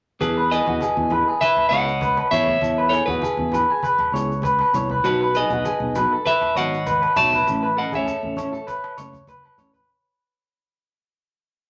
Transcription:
0.19 fingered electric bass E2, nylon-string guitar B3 E4 G#4, clean electric guitar G#4 B4, cajon bass, cajon slap, low agogo, maracas
0.38 clean electric guitar B4
0.50 nylon-string guitar B3 E4 G#4, clean electric guitar G#4 B4 D#5, maracas
0.66 fingered electric bass E2, nylon-string guitar E4 G#4, clean electric guitar F#4, cajon slap, high conga
0.81 clean electric guitar G#4, cajon bass, cajon slap, low agogo, maracas
0.96 fingered electric bass E2, nylon-string guitar E4 G#4, high conga
1.10 nylon-string guitar B3 E4 G#4, clean electric guitar B4, cajon slap, low conga, low agogo
1.28 clean electric guitar G#4
1.41 clean electric guitar B4 E5, cajon bass, maracas
1.56 cajon slap, high conga, low agogo
1.69 fingered electric bass C#2, nylon-string guitar B3 E4, clean electric guitar C#5 D#5 F#5, maracas
1.73 nylon-string guitar G#4
1.88 maracas
2.01 clean electric guitar B4, cajon bass, cajon slap, high conga, maracas
2.17 clean electric guitar B4, cajon slap, low agogo
2.31 fingered electric bass E2, nylon-string guitar B3 E4 G#4, clean electric guitar C#5 E5, low conga, maracas
2.47 high conga
2.62 fingered electric bass E2, cajon bass, cajon slap, low agogo, maracas
2.78 clean electric guitar B4
2.89 nylon-string guitar B3 E4 G#4, clean electric guitar G#4 A4 C#5, maracas
3.06 fingered electric bass E2, nylon-string guitar E4 G#4, clean electric guitar F#4 G#4 B4, cajon slap, high conga
3.10 maracas
3.22 clean electric guitar G#4, cajon bass, cajon slap, low agogo, maracas
3.37 fingered electric bass E2, nylon-string guitar E4 G#4, high conga
3.51 nylon-string guitar B3 E4 G#4, clean electric guitar B4, cajon slap, low conga, low agogo, maracas
3.70 clean electric guitar G#4
3.83 clean electric guitar B4, cajon bass, maracas
3.98 cajon slap, high conga, low agogo
4.12 fingered electric bass C#2, nylon-string guitar B3 E4 G#4, clean electric guitar C#5, maracas
4.32 maracas
4.42 clean electric guitar B4, cajon bass, cajon slap, high conga, maracas
4.59 clean electric guitar B4, cajon slap, low agogo
4.73 fingered electric bass C2, nylon-string guitar B3 E4 G#4, clean electric guitar C#5, low conga, maracas
4.90 clean electric guitar B4, high conga
5.04 fingered electric bass B1, nylon-string guitar F#3 B3 D#4, clean electric guitar F#4 B4, cajon bass, cajon slap, low agogo, maracas
5.21 clean electric guitar B4
5.34 nylon-string guitar F#3 D#4, clean electric guitar G#4 B4 D#5, maracas
5.49 fingered electric bass B1, nylon-string guitar B3 D#4, clean electric guitar F#4, cajon slap, high conga, maracas
5.65 clean electric guitar G#4, cajon bass, cajon slap, low agogo, maracas
5.80 fingered electric bass B1, nylon-string guitar B3 D#4, high conga
5.95 nylon-string guitar F#3 B3 D#4, clean electric guitar B4, cajon slap, low conga, low agogo, maracas
6.12 clean electric guitar A4
6.26 clean electric guitar B4 E5, cajon bass, maracas
6.41 cajon slap, high conga, low agogo
6.55 fingered electric bass G#1, nylon-string guitar F#3 B3 D#4, clean electric guitar C#5 D#5 F#5, maracas
6.74 maracas
6.86 clean electric guitar B4, cajon bass, cajon slap, high conga, maracas
7.02 clean electric guitar B4, cajon slap, low agogo
7.16 fingered electric bass B1, nylon-string guitar F#3 B3 D#4, clean electric guitar C#5 E5 A5, low conga, maracas
7.32 clean electric guitar B4, high conga
7.47 fingered electric bass A1, nylon-string guitar E3 A3 C#4, cajon bass, cajon slap, low agogo, maracas
7.63 clean electric guitar B4
7.77 nylon-string guitar A3 C#4, clean electric guitar A4 D#5 F#5
7.92 fingered electric bass A1, nylon-string guitar C#4, clean electric guitar G#4 E5, cajon slap, high conga, maracas
7.96 nylon-string guitar A3, clean electric guitar C#5
8.07 clean electric guitar A4, cajon bass, cajon slap, low agogo, maracas
8.23 fingered electric bass A1, nylon-string guitar A3 C#4, high conga
8.37 nylon-string guitar E3 A3 C#4, clean electric guitar C#5, cajon slap, low conga, low agogo, maracas
8.53 clean electric guitar A4, maracas
8.67 clean electric guitar B4, cajon bass, cajon slap, maracas
8.84 cajon slap, low agogo
8.98 fingered electric bass F#1, nylon-string guitar A3 C#4, clean electric guitar C#5, maracas
9.13 low conga, maracas
9.27 clean electric guitar B4, high conga, maracas
9.44 clean electric guitar B4, low agogo
9.57 fingered electric bass A1, nylon-string guitar E3 A3 C#4, clean electric guitar C#5, low conga, maracas
9.74 clean electric guitar B4, high conga, maracas

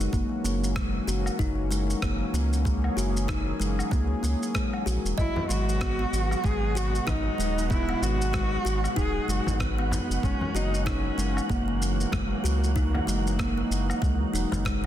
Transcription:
Already playing: analog synth pad F#3 F#4
0.01 shaker
0.13 analog synth bass F#1, analog synth pad E3 A#3 C#4, kalimba A#3, kick, shaker
0.44 analog synth bass F#1, kalimba A#3, shaker
0.64 shaker
0.76 kalimba G#3, kick, cross-stick, shaker
1.07 analog synth bass F#1, kalimba F#4, shaker
1.26 low woodblock, shaker
1.39 analog synth bass F#1, kalimba D#4, kick, shaker
1.71 kalimba G#3, shaker
1.90 shaker
2.02 analog synth bass F#1, kalimba A#3, kick, cross-stick, shaker
2.33 analog synth bass C#2, kalimba A#3, shaker
2.53 shaker
2.65 kalimba G#3, analog synth pad G#4, kick, shaker
2.84 low woodblock
2.97 analog synth bass F#1, kalimba F#4, shaker
3.17 shaker
3.28 kalimba D#4, kick, cross-stick, shaker
3.60 analog synth bass F#1, kalimba G#3, shaker
3.79 low woodblock, shaker
3.91 analog synth bass C#2, kalimba A#3, kick, shaker
4.23 analog synth bass C#2, kalimba A#3, shaker
4.43 shaker
4.54 kalimba G#3, kick, cross-stick, shaker
4.73 low woodblock
4.86 analog synth bass A#1, kalimba F#4, shaker
5.05 analog synth bass E1, shaker
5.18 analog synth bass G#1, analog synth pad B2 G#3 B3 F#4, cello E4, kalimba D#5, synth texture F#5, kick, shaker
5.36 frame drum
5.49 analog synth bass G#1, kalimba G#3, cello F#4, shaker
5.69 shaker
5.81 kalimba B3, kick, cross-stick, shaker
5.99 kalimba B3
6.13 analog synth bass G#1, shaker
6.31 low woodblock, shaker
6.44 analog synth bass G#1, kalimba G#3, cello G#4, kick, shaker
6.75 kalimba F#4, cello F#4, shaker
6.95 shaker
7.07 analog synth bass G#1, kalimba D#4, cello D#4, kick, cross-stick, frame drum, shaker
7.38 analog synth bass D#1, kalimba G#3, shaker
7.58 shaker
7.70 kalimba B3, cello E4, kick, shaker
7.89 kalimba B3, low woodblock
8.02 analog synth bass G#1, cello F#4, shaker
8.22 shaker
8.33 kalimba G#3, kick, cross-stick, shaker
8.65 analog synth bass G#1, kalimba F#4, shaker
8.84 low woodblock, shaker
8.96 analog synth bass D#1, kalimba D#4, cello G#4, kick, shaker
9.28 analog synth bass F#1, kalimba G#3, cello F#4, shaker
9.47 analog synth bass G#1, frame drum, shaker
9.60 kalimba B3, cello B3, kick, cross-stick, shaker
9.78 kalimba B3, low woodblock
9.91 frame drum, shaker
10.10 analog synth bass F#1, shaker
10.23 analog synth bass F#1, analog synth pad E3 F#3 A#3 C#4 F#4, kalimba G#3, cello C#4, kick, shaker
10.41 frame drum
10.55 analog synth bass F#1, cello D#4, kalimba F#4, shaker
10.74 shaker
10.86 cello C#4, kalimba D#4, kick, cross-stick, shaker
11.18 analog synth bass F#1, kalimba G#3, shaker
11.37 low woodblock, shaker
11.49 analog synth bass F#1, cello A#3, kalimba A#3, kick, shaker
11.68 kalimba A#3
11.82 shaker
12.01 shaker
12.12 analog synth bass F#1, kalimba G#3, kick, cross-stick, frame drum, shaker
12.44 analog synth bass C#2, kalimba F#4, shaker
12.64 shaker
12.75 analog synth pad D#4, kalimba D#4, kick, shaker
12.95 frame drum, low woodblock
13.07 analog synth bass F#1, kalimba G#3, shaker
13.27 shaker
13.39 kalimba A#3, kick, cross-stick, shaker
13.58 kalimba A#3
13.70 analog synth bass F#1, shaker
13.90 low woodblock, shaker
14.02 analog synth bass C#2, kalimba G#3, kick, shaker
14.33 analog synth bass E1, kalimba D#4, shaker
14.52 analog synth bass F#1, kalimba G#3, frame drum, shaker
14.65 kalimba G#3, kick, cross-stick, shaker

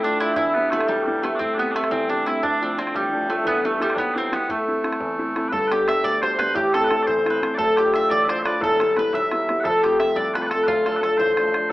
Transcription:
Already playing: upright piano A2, harp A3 C4 E4
0.03 upright piano A3 D4 F4, bagpipes D4, harp D4, mandolin D4
0.20 upright piano A3 D4 F4, harp E4, mandolin E4, bodhran
0.33 upright piano E2, mandolin E4, bagpipes E4 G4, bodhran
0.37 harp E4
0.54 upright piano G3 B3 E4, bagpipes B3, harp B3
0.70 upright piano G3 B3 E4, bagpipes A3, harp A3, mandolin A3, bodhran
0.80 bodhran
0.88 upright piano B1, bagpipes G3, mandolin G3, harp G3, bodhran
1.03 upright piano G3, bagpipes G3 A3
1.07 upright piano B3 E4
1.22 upright piano G3 B3 E4, bagpipes A3, mandolin A3, harp A3, bodhran
1.36 mandolin C4, bagpipes C4 D4
1.40 upright piano A2, harp C4, bodhran
1.54 upright piano G3 A3 C4, bagpipes D4
1.58 bagpipes B3, mandolin B3, harp B3
1.71 upright piano G3, harp B3, bagpipes D4
1.75 bagpipes A3, upright piano A3 C4, harp A3, mandolin A3, bodhran
1.84 bodhran
1.91 upright piano E2, harp C4, mandolin C4, bagpipes C4, bodhran
2.09 upright piano G3 A3 C4, mandolin D4, bagpipes D4, harp D4
2.25 upright piano G3 A3 C4, mandolin E4, bagpipes E4, harp E4, bodhran
2.43 upright piano D2, mandolin D4, bagpipes D4, harp D4, bodhran
2.61 upright piano F3 A3 D4, mandolin C4, harp C4
2.78 upright piano F3 A3 D4, mandolin C4, bagpipes C4, harp C4, bodhran
2.87 bodhran
2.94 upright piano A1, bagpipes G3, mandolin G3, harp G3, bodhran
3.12 upright piano F3 A3 D4
3.29 upright piano F3 A3 D4, mandolin A3, bagpipes A3, harp A3, bodhran
3.45 upright piano E2, mandolin B3, bagpipes B3, harp B3, bodhran
3.61 upright piano G3 B3 E4, mandolin A3, harp B3
3.66 bagpipes A3, harp A3
3.79 upright piano G3 B3 E4, bagpipes G3, mandolin G3, bodhran
3.84 harp G3
3.90 bodhran
3.94 upright piano B1, bagpipes B3 D4, mandolin B3, bodhran
4.00 harp B3
4.14 upright piano G3 B3 E4, bagpipes C4 D4, mandolin C4
4.19 harp C4
4.31 upright piano G3 B3 E4, mandolin B3, bagpipes B3, harp B3, bodhran
4.49 upright piano A2, mandolin A3, bagpipes A3, harp A3, bodhran
4.67 upright piano A3 C4 E4
4.83 upright piano A3 C4 E4, bodhran
4.93 bodhran
5.00 upright piano E2, bodhran
5.18 upright piano A3 C4 E4
5.35 upright piano A3 C4 E4, bodhran
5.49 upright piano G1 G2, harp A4, mandolin A4, bagpipes B4
5.53 bagpipes A4, bodhran
5.68 upright piano G3 B3 D4, harp G4, bagpipes G4 B4, bodhran
5.72 mandolin G4
5.87 upright piano G3 B3 D4, harp E5, bagpipes E5, mandolin E5, bodhran
6.04 upright piano D2, harp D5, bagpipes D5, mandolin D5, bodhran
6.13 bodhran
6.21 upright piano B2 G3 D4, bagpipes C5, harp C5, mandolin C5, bodhran
6.39 upright piano G3 B3 D4, mandolin B4, harp B4, bodhran
6.55 upright piano A1 A2, bagpipes G4, harp G4, mandolin G4, bodhran
6.73 upright piano A3 C4 E4, bagpipes A4, harp A4, mandolin A4, bodhran
6.84 bagpipes B4
6.89 upright piano A3 C4 E4, bagpipes A4, harp A4, bodhran
7.03 bagpipes C5 D5
7.07 upright piano E2, harp C5, mandolin C5, bodhran
7.17 bodhran
7.25 upright piano A3 C4 E4, bodhran
7.30 mandolin B4
7.42 upright piano A3 C4 E4, bodhran
7.54 upright piano D1 D2, bagpipes A4 D5
7.58 mandolin A4, harp A4, bodhran
7.76 upright piano A3 D4 F4, bagpipes G4, harp G4, mandolin G4, bodhran
7.93 upright piano A3 D4 F4, harp E5, bagpipes E5, mandolin E5, bodhran
8.09 upright piano A1, harp D5, bagpipes D5, mandolin D5, bodhran
8.20 bodhran
8.24 upright piano A3 D4, harp C5, bagpipes E5
8.28 upright piano F4, mandolin C5, bagpipes D5, bodhran
8.39 bagpipes C5 E5
8.44 upright piano A3 D4 F4, harp B4, mandolin B4, bagpipes D5, bodhran
8.60 upright piano E1 E2, harp A4, bagpipes A4, mandolin A4, bodhran
8.80 upright piano G3 B3 E4, mandolin A4, bodhran
8.95 upright piano G3 B3 E4, harp B4, bagpipes B4, mandolin B4, bodhran
9.12 upright piano B1, harp E5, bagpipes E5, mandolin E5, bodhran
9.23 bodhran
9.31 upright piano G3 B3 E4, bodhran
9.48 upright piano G3 B3 E4, bodhran
9.60 upright piano F2, harp A4, bagpipes A4 F#5
9.64 upright piano F1, mandolin A4, bodhran
9.82 upright piano A3 C4 F4, harp G4, bagpipes G4, mandolin G4, bodhran
9.99 upright piano A3 C4 F4, bagpipes E5, harp E5, mandolin E5, bodhran
10.16 upright piano C2, bagpipes D5, mandolin D5, harp D5, bodhran
10.26 bodhran
10.34 upright piano A3 C4 F4, bagpipes B4, harp B4, mandolin B4, bodhran
10.42 bagpipes D5
10.46 bagpipes A4 B4
10.51 upright piano A3 C4 F4, mandolin A4, harp A4, bodhran
10.64 bagpipes F4 B4
10.68 upright piano D1 D2, harp F4, mandolin F4, bodhran
10.85 upright piano F3 A3 D4, mandolin A4, harp A4, bodhran
10.97 bagpipes B4
11.01 upright piano F3 A3 D4, bagpipes A4, harp A4, mandolin A4, bodhran
11.18 upright piano A1, bagpipes C5, harp C5, mandolin C5, bodhran
11.28 bodhran
11.37 upright piano F3 A3 D4, bodhran
11.54 upright piano F3 A3 D4, bodhran

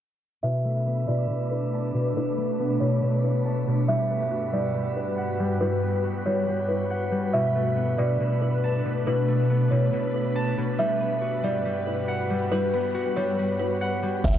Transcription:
0.43 ambient pad B2 A3 D4 B4, harp B2, synth texture A3 D4 B4, kalimba E5
0.65 harp A3
0.86 harp B3
1.08 harp B2, kalimba D5
1.30 harp B2
1.51 kalimba B4
1.73 harp A5
1.94 harp B2
2.16 harp B2, kalimba B4
2.38 harp A3
2.59 harp B3
2.80 harp B2, kalimba C#5
3.02 harp B2
3.24 kalimba B4
3.45 harp A5
3.67 harp B2
3.88 ambient pad G2 G3 F#4 B4, harp G3, synth texture G3 F#4, kalimba E5
4.10 harp B3
4.31 harp F#4
4.53 harp G3, kalimba D5
4.75 harp G3
4.96 kalimba B4
5.18 harp F#5
5.39 harp G3
5.61 harp G3, kalimba B4
5.83 harp B3
6.04 harp F#4
6.26 harp G3, kalimba C#5
6.48 harp G3
6.69 kalimba B4
6.90 harp F#5
7.12 harp G3
7.33 harp B2, ambient pad B2 A3 D4, synth texture A3 D4, kalimba E5
7.56 harp A3
7.77 harp B3
7.98 harp B2, kalimba D5
8.20 harp B2
8.42 kalimba B4
8.64 harp A5
8.85 harp B2
9.06 harp B2, kalimba B4
9.28 harp A3
9.50 harp B3
9.71 harp B2, kalimba C#5
9.93 harp B2
10.14 kalimba B4
10.36 harp A5
10.58 harp B2
10.78 ambient pad G2 G3 F#4, harp G3, synth texture G3 F#4 B4, kalimba E5
11.00 harp B3
11.21 harp F#4
11.43 harp G3, kalimba D5
11.65 harp G3
11.87 kalimba B4
12.08 harp F#5
12.30 harp G3
12.52 harp G3, kalimba B4
12.73 harp B3
12.95 harp F#4
13.16 harp G3, kalimba C#5
13.39 harp G3
13.59 kalimba B4
13.81 harp F#5
14.02 harp G3
14.24 808-style bass B1, synth texture A3 D4 B4, kalimba E5, kick, closed hi-hat, crash

